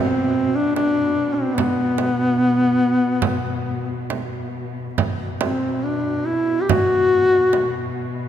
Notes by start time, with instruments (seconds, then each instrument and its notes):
Already playing: string section B2, duduk C4
0.55 duduk D4
0.75 duduk D4, frame drum
1.35 duduk C4
1.55 duduk B3, frame drum
1.98 frame drum
3.22 frame drum
4.10 frame drum
4.98 string section B2, frame drum
5.41 duduk C4, frame drum
5.84 duduk D4
6.26 duduk E4
6.61 duduk G4
6.69 duduk F#4, frame drum
7.53 frame drum